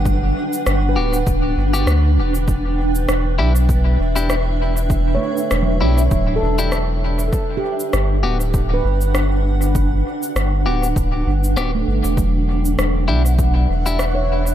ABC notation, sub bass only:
X:1
M:4/4
L:1/16
Q:"Swing 16ths" 1/4=99
K:Edor
V:1 name="Sub bass" clef=bass
G,,,2 z2 G,,,2 D,,,2 D,,,2 G,,,2 D,,2 E,,,2- | E,,,4 E,,,2 B,,,4 E,,,6- | E,,,2 z2 E,,,2 B,,,2 D,,,2 E,,,6 | z4 G,,,2 D,,,4 G,,,6- |
G,,,2 z2 G,,,2 D,,,2 D,,,2 G,,,2 D,,,2 G,,, E,,,- | E,,,4 E,,,2 B,,,4 E,,,6 |]